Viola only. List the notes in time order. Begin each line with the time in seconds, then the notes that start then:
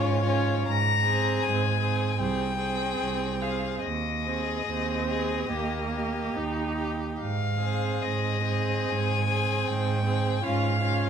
Already playing: C#4
0.27 C#4
1.05 C4
1.80 C4
2.19 C4
2.58 C4
3.41 C4
4.25 C4
4.67 C4
5.49 A#3
6.37 D#4
7.62 C4
8.45 C4
9.29 C4
10.06 C4
10.44 C#4
10.82 C#4